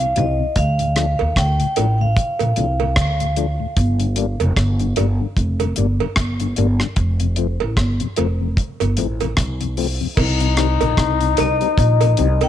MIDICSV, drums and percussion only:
0, 0, Header, 1, 2, 480
1, 0, Start_track
1, 0, Key_signature, -2, "minor"
1, 0, Tempo, 801068
1, 336, Time_signature, 4, 2, 24, 8
1, 7482, End_track
2, 0, Start_track
2, 0, Title_t, "Drums"
2, 96, Note_on_c, 9, 42, 70
2, 155, Note_off_c, 9, 42, 0
2, 334, Note_on_c, 9, 42, 89
2, 336, Note_on_c, 9, 36, 102
2, 394, Note_off_c, 9, 42, 0
2, 396, Note_off_c, 9, 36, 0
2, 474, Note_on_c, 9, 42, 49
2, 534, Note_off_c, 9, 42, 0
2, 575, Note_on_c, 9, 42, 77
2, 578, Note_on_c, 9, 37, 70
2, 634, Note_off_c, 9, 42, 0
2, 638, Note_off_c, 9, 37, 0
2, 714, Note_on_c, 9, 56, 66
2, 774, Note_off_c, 9, 56, 0
2, 816, Note_on_c, 9, 36, 107
2, 820, Note_on_c, 9, 37, 92
2, 820, Note_on_c, 9, 42, 74
2, 876, Note_off_c, 9, 36, 0
2, 879, Note_off_c, 9, 42, 0
2, 880, Note_off_c, 9, 37, 0
2, 957, Note_on_c, 9, 42, 53
2, 1017, Note_off_c, 9, 42, 0
2, 1055, Note_on_c, 9, 42, 74
2, 1059, Note_on_c, 9, 56, 78
2, 1115, Note_off_c, 9, 42, 0
2, 1119, Note_off_c, 9, 56, 0
2, 1298, Note_on_c, 9, 36, 110
2, 1303, Note_on_c, 9, 42, 82
2, 1357, Note_off_c, 9, 36, 0
2, 1363, Note_off_c, 9, 42, 0
2, 1434, Note_on_c, 9, 56, 76
2, 1440, Note_on_c, 9, 42, 45
2, 1494, Note_off_c, 9, 56, 0
2, 1500, Note_off_c, 9, 42, 0
2, 1534, Note_on_c, 9, 42, 67
2, 1594, Note_off_c, 9, 42, 0
2, 1676, Note_on_c, 9, 56, 73
2, 1736, Note_off_c, 9, 56, 0
2, 1774, Note_on_c, 9, 37, 93
2, 1779, Note_on_c, 9, 36, 101
2, 1784, Note_on_c, 9, 42, 86
2, 1834, Note_off_c, 9, 37, 0
2, 1839, Note_off_c, 9, 36, 0
2, 1844, Note_off_c, 9, 42, 0
2, 1919, Note_on_c, 9, 42, 55
2, 1979, Note_off_c, 9, 42, 0
2, 2016, Note_on_c, 9, 42, 60
2, 2076, Note_off_c, 9, 42, 0
2, 2256, Note_on_c, 9, 42, 88
2, 2257, Note_on_c, 9, 36, 109
2, 2316, Note_off_c, 9, 42, 0
2, 2317, Note_off_c, 9, 36, 0
2, 2394, Note_on_c, 9, 42, 54
2, 2454, Note_off_c, 9, 42, 0
2, 2492, Note_on_c, 9, 42, 76
2, 2552, Note_off_c, 9, 42, 0
2, 2636, Note_on_c, 9, 56, 63
2, 2637, Note_on_c, 9, 42, 35
2, 2696, Note_off_c, 9, 42, 0
2, 2696, Note_off_c, 9, 56, 0
2, 2735, Note_on_c, 9, 36, 106
2, 2738, Note_on_c, 9, 37, 102
2, 2738, Note_on_c, 9, 42, 81
2, 2795, Note_off_c, 9, 36, 0
2, 2797, Note_off_c, 9, 42, 0
2, 2798, Note_off_c, 9, 37, 0
2, 2873, Note_on_c, 9, 42, 47
2, 2933, Note_off_c, 9, 42, 0
2, 2972, Note_on_c, 9, 42, 74
2, 2978, Note_on_c, 9, 56, 79
2, 3032, Note_off_c, 9, 42, 0
2, 3038, Note_off_c, 9, 56, 0
2, 3215, Note_on_c, 9, 36, 108
2, 3219, Note_on_c, 9, 42, 87
2, 3275, Note_off_c, 9, 36, 0
2, 3279, Note_off_c, 9, 42, 0
2, 3354, Note_on_c, 9, 56, 70
2, 3355, Note_on_c, 9, 42, 53
2, 3414, Note_off_c, 9, 56, 0
2, 3415, Note_off_c, 9, 42, 0
2, 3450, Note_on_c, 9, 42, 66
2, 3510, Note_off_c, 9, 42, 0
2, 3597, Note_on_c, 9, 56, 74
2, 3657, Note_off_c, 9, 56, 0
2, 3690, Note_on_c, 9, 37, 94
2, 3697, Note_on_c, 9, 36, 107
2, 3701, Note_on_c, 9, 42, 77
2, 3750, Note_off_c, 9, 37, 0
2, 3757, Note_off_c, 9, 36, 0
2, 3761, Note_off_c, 9, 42, 0
2, 3833, Note_on_c, 9, 42, 53
2, 3892, Note_off_c, 9, 42, 0
2, 3933, Note_on_c, 9, 42, 64
2, 3993, Note_off_c, 9, 42, 0
2, 4073, Note_on_c, 9, 37, 63
2, 4133, Note_off_c, 9, 37, 0
2, 4172, Note_on_c, 9, 42, 90
2, 4175, Note_on_c, 9, 36, 107
2, 4232, Note_off_c, 9, 42, 0
2, 4234, Note_off_c, 9, 36, 0
2, 4313, Note_on_c, 9, 42, 51
2, 4373, Note_off_c, 9, 42, 0
2, 4411, Note_on_c, 9, 42, 73
2, 4471, Note_off_c, 9, 42, 0
2, 4556, Note_on_c, 9, 56, 66
2, 4615, Note_off_c, 9, 56, 0
2, 4655, Note_on_c, 9, 36, 115
2, 4658, Note_on_c, 9, 37, 88
2, 4658, Note_on_c, 9, 42, 83
2, 4715, Note_off_c, 9, 36, 0
2, 4717, Note_off_c, 9, 42, 0
2, 4718, Note_off_c, 9, 37, 0
2, 4793, Note_on_c, 9, 42, 53
2, 4853, Note_off_c, 9, 42, 0
2, 4892, Note_on_c, 9, 42, 73
2, 4899, Note_on_c, 9, 56, 82
2, 4952, Note_off_c, 9, 42, 0
2, 4959, Note_off_c, 9, 56, 0
2, 5135, Note_on_c, 9, 36, 111
2, 5141, Note_on_c, 9, 42, 79
2, 5195, Note_off_c, 9, 36, 0
2, 5201, Note_off_c, 9, 42, 0
2, 5274, Note_on_c, 9, 56, 71
2, 5278, Note_on_c, 9, 42, 51
2, 5334, Note_off_c, 9, 56, 0
2, 5338, Note_off_c, 9, 42, 0
2, 5373, Note_on_c, 9, 42, 67
2, 5433, Note_off_c, 9, 42, 0
2, 5515, Note_on_c, 9, 42, 33
2, 5516, Note_on_c, 9, 56, 72
2, 5575, Note_off_c, 9, 42, 0
2, 5576, Note_off_c, 9, 56, 0
2, 5613, Note_on_c, 9, 37, 98
2, 5618, Note_on_c, 9, 36, 99
2, 5623, Note_on_c, 9, 42, 89
2, 5673, Note_off_c, 9, 37, 0
2, 5678, Note_off_c, 9, 36, 0
2, 5683, Note_off_c, 9, 42, 0
2, 5756, Note_on_c, 9, 42, 57
2, 5816, Note_off_c, 9, 42, 0
2, 5855, Note_on_c, 9, 46, 69
2, 5915, Note_off_c, 9, 46, 0
2, 6094, Note_on_c, 9, 49, 100
2, 6095, Note_on_c, 9, 36, 113
2, 6095, Note_on_c, 9, 56, 75
2, 6154, Note_off_c, 9, 49, 0
2, 6155, Note_off_c, 9, 36, 0
2, 6155, Note_off_c, 9, 56, 0
2, 6234, Note_on_c, 9, 42, 51
2, 6294, Note_off_c, 9, 42, 0
2, 6333, Note_on_c, 9, 42, 85
2, 6336, Note_on_c, 9, 37, 69
2, 6392, Note_off_c, 9, 42, 0
2, 6396, Note_off_c, 9, 37, 0
2, 6475, Note_on_c, 9, 56, 74
2, 6477, Note_on_c, 9, 42, 39
2, 6535, Note_off_c, 9, 56, 0
2, 6537, Note_off_c, 9, 42, 0
2, 6575, Note_on_c, 9, 36, 117
2, 6578, Note_on_c, 9, 42, 82
2, 6579, Note_on_c, 9, 37, 102
2, 6635, Note_off_c, 9, 36, 0
2, 6638, Note_off_c, 9, 37, 0
2, 6638, Note_off_c, 9, 42, 0
2, 6715, Note_on_c, 9, 42, 56
2, 6774, Note_off_c, 9, 42, 0
2, 6813, Note_on_c, 9, 42, 79
2, 6819, Note_on_c, 9, 56, 94
2, 6873, Note_off_c, 9, 42, 0
2, 6879, Note_off_c, 9, 56, 0
2, 6956, Note_on_c, 9, 42, 36
2, 7016, Note_off_c, 9, 42, 0
2, 7056, Note_on_c, 9, 36, 119
2, 7062, Note_on_c, 9, 42, 87
2, 7116, Note_off_c, 9, 36, 0
2, 7122, Note_off_c, 9, 42, 0
2, 7194, Note_on_c, 9, 56, 78
2, 7196, Note_on_c, 9, 42, 57
2, 7254, Note_off_c, 9, 56, 0
2, 7256, Note_off_c, 9, 42, 0
2, 7293, Note_on_c, 9, 42, 68
2, 7353, Note_off_c, 9, 42, 0
2, 7435, Note_on_c, 9, 42, 35
2, 7438, Note_on_c, 9, 56, 84
2, 7482, Note_off_c, 9, 42, 0
2, 7482, Note_off_c, 9, 56, 0
2, 7482, End_track
0, 0, End_of_file